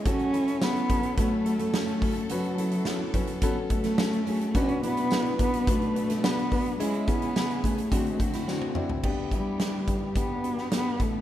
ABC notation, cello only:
X:1
M:4/4
L:1/8
Q:1/4=107
K:F#m
V:1 name="Cello"
C2 B,2 A,2 A,2 | F,4 z A,3 | C B,2 B, A,2 B,2 | G, B,2 A,4 z |
[K:Glyd] z G,3 B,2 B, A, |]